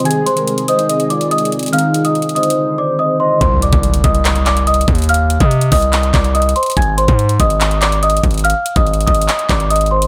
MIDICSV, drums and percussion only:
0, 0, Header, 1, 2, 480
1, 0, Start_track
1, 0, Key_signature, -3, "minor"
1, 0, Tempo, 419580
1, 62, Time_signature, 4, 2, 24, 8
1, 11524, End_track
2, 0, Start_track
2, 0, Title_t, "Drums"
2, 1, Note_on_c, 9, 42, 52
2, 61, Note_off_c, 9, 42, 0
2, 61, Note_on_c, 9, 42, 61
2, 121, Note_off_c, 9, 42, 0
2, 121, Note_on_c, 9, 42, 72
2, 236, Note_off_c, 9, 42, 0
2, 303, Note_on_c, 9, 42, 79
2, 418, Note_off_c, 9, 42, 0
2, 420, Note_on_c, 9, 42, 62
2, 534, Note_off_c, 9, 42, 0
2, 543, Note_on_c, 9, 42, 67
2, 658, Note_off_c, 9, 42, 0
2, 661, Note_on_c, 9, 42, 64
2, 776, Note_off_c, 9, 42, 0
2, 780, Note_on_c, 9, 42, 89
2, 895, Note_off_c, 9, 42, 0
2, 901, Note_on_c, 9, 42, 59
2, 1016, Note_off_c, 9, 42, 0
2, 1024, Note_on_c, 9, 42, 81
2, 1138, Note_off_c, 9, 42, 0
2, 1141, Note_on_c, 9, 42, 49
2, 1256, Note_off_c, 9, 42, 0
2, 1261, Note_on_c, 9, 42, 61
2, 1376, Note_off_c, 9, 42, 0
2, 1383, Note_on_c, 9, 42, 60
2, 1497, Note_off_c, 9, 42, 0
2, 1502, Note_on_c, 9, 42, 59
2, 1582, Note_off_c, 9, 42, 0
2, 1582, Note_on_c, 9, 42, 60
2, 1662, Note_off_c, 9, 42, 0
2, 1662, Note_on_c, 9, 42, 57
2, 1742, Note_off_c, 9, 42, 0
2, 1742, Note_on_c, 9, 42, 55
2, 1822, Note_off_c, 9, 42, 0
2, 1822, Note_on_c, 9, 42, 58
2, 1862, Note_off_c, 9, 42, 0
2, 1862, Note_on_c, 9, 42, 44
2, 1902, Note_off_c, 9, 42, 0
2, 1902, Note_on_c, 9, 42, 58
2, 1922, Note_off_c, 9, 42, 0
2, 1922, Note_on_c, 9, 42, 53
2, 1982, Note_off_c, 9, 42, 0
2, 1982, Note_on_c, 9, 42, 65
2, 2042, Note_off_c, 9, 42, 0
2, 2042, Note_on_c, 9, 42, 70
2, 2157, Note_off_c, 9, 42, 0
2, 2224, Note_on_c, 9, 42, 78
2, 2338, Note_off_c, 9, 42, 0
2, 2342, Note_on_c, 9, 42, 60
2, 2456, Note_off_c, 9, 42, 0
2, 2462, Note_on_c, 9, 42, 39
2, 2542, Note_off_c, 9, 42, 0
2, 2542, Note_on_c, 9, 42, 45
2, 2622, Note_off_c, 9, 42, 0
2, 2622, Note_on_c, 9, 42, 51
2, 2702, Note_off_c, 9, 42, 0
2, 2702, Note_on_c, 9, 42, 60
2, 2782, Note_off_c, 9, 42, 0
2, 2782, Note_on_c, 9, 42, 64
2, 2862, Note_off_c, 9, 42, 0
2, 2862, Note_on_c, 9, 42, 69
2, 2976, Note_off_c, 9, 42, 0
2, 3902, Note_on_c, 9, 36, 112
2, 3903, Note_on_c, 9, 42, 84
2, 4017, Note_off_c, 9, 36, 0
2, 4017, Note_off_c, 9, 42, 0
2, 4145, Note_on_c, 9, 42, 76
2, 4259, Note_off_c, 9, 42, 0
2, 4262, Note_on_c, 9, 42, 62
2, 4263, Note_on_c, 9, 36, 96
2, 4376, Note_off_c, 9, 42, 0
2, 4378, Note_off_c, 9, 36, 0
2, 4385, Note_on_c, 9, 42, 66
2, 4500, Note_off_c, 9, 42, 0
2, 4503, Note_on_c, 9, 42, 67
2, 4618, Note_off_c, 9, 42, 0
2, 4622, Note_on_c, 9, 42, 93
2, 4623, Note_on_c, 9, 36, 91
2, 4736, Note_off_c, 9, 42, 0
2, 4738, Note_off_c, 9, 36, 0
2, 4743, Note_on_c, 9, 42, 59
2, 4857, Note_off_c, 9, 42, 0
2, 4862, Note_on_c, 9, 39, 104
2, 4865, Note_on_c, 9, 42, 85
2, 4977, Note_off_c, 9, 39, 0
2, 4980, Note_off_c, 9, 42, 0
2, 4983, Note_on_c, 9, 42, 52
2, 5097, Note_off_c, 9, 42, 0
2, 5103, Note_on_c, 9, 39, 98
2, 5103, Note_on_c, 9, 42, 65
2, 5217, Note_off_c, 9, 39, 0
2, 5217, Note_off_c, 9, 42, 0
2, 5224, Note_on_c, 9, 42, 61
2, 5339, Note_off_c, 9, 42, 0
2, 5343, Note_on_c, 9, 42, 60
2, 5423, Note_off_c, 9, 42, 0
2, 5423, Note_on_c, 9, 42, 60
2, 5502, Note_off_c, 9, 42, 0
2, 5502, Note_on_c, 9, 42, 58
2, 5581, Note_on_c, 9, 36, 89
2, 5582, Note_off_c, 9, 42, 0
2, 5582, Note_on_c, 9, 42, 59
2, 5663, Note_off_c, 9, 42, 0
2, 5663, Note_on_c, 9, 42, 59
2, 5696, Note_off_c, 9, 36, 0
2, 5702, Note_off_c, 9, 42, 0
2, 5702, Note_on_c, 9, 42, 46
2, 5742, Note_off_c, 9, 42, 0
2, 5742, Note_on_c, 9, 42, 57
2, 5762, Note_off_c, 9, 42, 0
2, 5762, Note_on_c, 9, 42, 54
2, 5822, Note_off_c, 9, 42, 0
2, 5822, Note_on_c, 9, 42, 64
2, 5882, Note_off_c, 9, 42, 0
2, 5882, Note_on_c, 9, 42, 75
2, 5997, Note_off_c, 9, 42, 0
2, 6064, Note_on_c, 9, 42, 81
2, 6179, Note_off_c, 9, 42, 0
2, 6182, Note_on_c, 9, 42, 63
2, 6183, Note_on_c, 9, 36, 92
2, 6296, Note_off_c, 9, 42, 0
2, 6297, Note_off_c, 9, 36, 0
2, 6305, Note_on_c, 9, 42, 67
2, 6419, Note_off_c, 9, 42, 0
2, 6422, Note_on_c, 9, 42, 64
2, 6537, Note_off_c, 9, 42, 0
2, 6541, Note_on_c, 9, 46, 93
2, 6543, Note_on_c, 9, 36, 88
2, 6656, Note_off_c, 9, 46, 0
2, 6657, Note_off_c, 9, 36, 0
2, 6662, Note_on_c, 9, 42, 61
2, 6776, Note_off_c, 9, 42, 0
2, 6781, Note_on_c, 9, 39, 105
2, 6784, Note_on_c, 9, 42, 81
2, 6895, Note_off_c, 9, 39, 0
2, 6899, Note_off_c, 9, 42, 0
2, 6902, Note_on_c, 9, 42, 53
2, 7016, Note_off_c, 9, 42, 0
2, 7022, Note_on_c, 9, 36, 102
2, 7022, Note_on_c, 9, 39, 104
2, 7022, Note_on_c, 9, 42, 63
2, 7136, Note_off_c, 9, 36, 0
2, 7137, Note_off_c, 9, 39, 0
2, 7137, Note_off_c, 9, 42, 0
2, 7143, Note_on_c, 9, 42, 62
2, 7258, Note_off_c, 9, 42, 0
2, 7262, Note_on_c, 9, 42, 60
2, 7343, Note_off_c, 9, 42, 0
2, 7343, Note_on_c, 9, 42, 59
2, 7423, Note_off_c, 9, 42, 0
2, 7423, Note_on_c, 9, 42, 61
2, 7502, Note_off_c, 9, 42, 0
2, 7502, Note_on_c, 9, 42, 61
2, 7582, Note_off_c, 9, 42, 0
2, 7582, Note_on_c, 9, 42, 61
2, 7622, Note_off_c, 9, 42, 0
2, 7622, Note_on_c, 9, 42, 44
2, 7662, Note_off_c, 9, 42, 0
2, 7662, Note_on_c, 9, 42, 60
2, 7682, Note_off_c, 9, 42, 0
2, 7682, Note_on_c, 9, 42, 55
2, 7742, Note_off_c, 9, 42, 0
2, 7742, Note_on_c, 9, 36, 110
2, 7742, Note_on_c, 9, 42, 64
2, 7802, Note_off_c, 9, 42, 0
2, 7802, Note_on_c, 9, 42, 77
2, 7856, Note_off_c, 9, 36, 0
2, 7917, Note_off_c, 9, 42, 0
2, 7984, Note_on_c, 9, 42, 78
2, 8099, Note_off_c, 9, 42, 0
2, 8102, Note_on_c, 9, 42, 63
2, 8103, Note_on_c, 9, 36, 98
2, 8216, Note_off_c, 9, 42, 0
2, 8217, Note_off_c, 9, 36, 0
2, 8225, Note_on_c, 9, 42, 65
2, 8339, Note_off_c, 9, 42, 0
2, 8343, Note_on_c, 9, 42, 64
2, 8457, Note_off_c, 9, 42, 0
2, 8461, Note_on_c, 9, 42, 90
2, 8463, Note_on_c, 9, 36, 90
2, 8576, Note_off_c, 9, 42, 0
2, 8577, Note_off_c, 9, 36, 0
2, 8582, Note_on_c, 9, 42, 60
2, 8697, Note_off_c, 9, 42, 0
2, 8701, Note_on_c, 9, 39, 103
2, 8704, Note_on_c, 9, 42, 81
2, 8816, Note_off_c, 9, 39, 0
2, 8819, Note_off_c, 9, 42, 0
2, 8822, Note_on_c, 9, 42, 51
2, 8936, Note_off_c, 9, 42, 0
2, 8942, Note_on_c, 9, 39, 103
2, 8942, Note_on_c, 9, 42, 66
2, 9056, Note_off_c, 9, 42, 0
2, 9057, Note_off_c, 9, 39, 0
2, 9064, Note_on_c, 9, 42, 62
2, 9178, Note_off_c, 9, 42, 0
2, 9183, Note_on_c, 9, 42, 61
2, 9263, Note_off_c, 9, 42, 0
2, 9263, Note_on_c, 9, 42, 60
2, 9343, Note_off_c, 9, 42, 0
2, 9343, Note_on_c, 9, 42, 60
2, 9421, Note_on_c, 9, 36, 92
2, 9423, Note_off_c, 9, 42, 0
2, 9423, Note_on_c, 9, 42, 59
2, 9503, Note_off_c, 9, 42, 0
2, 9503, Note_on_c, 9, 42, 60
2, 9535, Note_off_c, 9, 36, 0
2, 9543, Note_off_c, 9, 42, 0
2, 9543, Note_on_c, 9, 42, 45
2, 9582, Note_off_c, 9, 42, 0
2, 9582, Note_on_c, 9, 42, 59
2, 9602, Note_off_c, 9, 42, 0
2, 9602, Note_on_c, 9, 42, 55
2, 9662, Note_off_c, 9, 42, 0
2, 9662, Note_on_c, 9, 42, 64
2, 9722, Note_off_c, 9, 42, 0
2, 9722, Note_on_c, 9, 42, 75
2, 9836, Note_off_c, 9, 42, 0
2, 9904, Note_on_c, 9, 42, 80
2, 10019, Note_off_c, 9, 42, 0
2, 10021, Note_on_c, 9, 42, 62
2, 10022, Note_on_c, 9, 36, 93
2, 10135, Note_off_c, 9, 42, 0
2, 10137, Note_off_c, 9, 36, 0
2, 10142, Note_on_c, 9, 42, 41
2, 10222, Note_off_c, 9, 42, 0
2, 10222, Note_on_c, 9, 42, 47
2, 10302, Note_off_c, 9, 42, 0
2, 10302, Note_on_c, 9, 42, 52
2, 10381, Note_on_c, 9, 46, 93
2, 10382, Note_off_c, 9, 42, 0
2, 10382, Note_on_c, 9, 42, 60
2, 10383, Note_on_c, 9, 36, 94
2, 10462, Note_off_c, 9, 42, 0
2, 10462, Note_on_c, 9, 42, 67
2, 10495, Note_off_c, 9, 46, 0
2, 10497, Note_off_c, 9, 36, 0
2, 10542, Note_off_c, 9, 42, 0
2, 10542, Note_on_c, 9, 42, 70
2, 10621, Note_on_c, 9, 39, 102
2, 10624, Note_off_c, 9, 42, 0
2, 10624, Note_on_c, 9, 42, 80
2, 10735, Note_off_c, 9, 39, 0
2, 10739, Note_off_c, 9, 42, 0
2, 10742, Note_on_c, 9, 42, 51
2, 10856, Note_off_c, 9, 42, 0
2, 10862, Note_on_c, 9, 36, 96
2, 10862, Note_on_c, 9, 42, 64
2, 10863, Note_on_c, 9, 39, 99
2, 10976, Note_off_c, 9, 36, 0
2, 10977, Note_off_c, 9, 39, 0
2, 10977, Note_off_c, 9, 42, 0
2, 10983, Note_on_c, 9, 42, 61
2, 11097, Note_off_c, 9, 42, 0
2, 11102, Note_on_c, 9, 42, 69
2, 11162, Note_off_c, 9, 42, 0
2, 11162, Note_on_c, 9, 42, 62
2, 11222, Note_off_c, 9, 42, 0
2, 11222, Note_on_c, 9, 42, 52
2, 11282, Note_off_c, 9, 42, 0
2, 11282, Note_on_c, 9, 42, 42
2, 11397, Note_off_c, 9, 42, 0
2, 11462, Note_on_c, 9, 42, 72
2, 11524, Note_off_c, 9, 42, 0
2, 11524, End_track
0, 0, End_of_file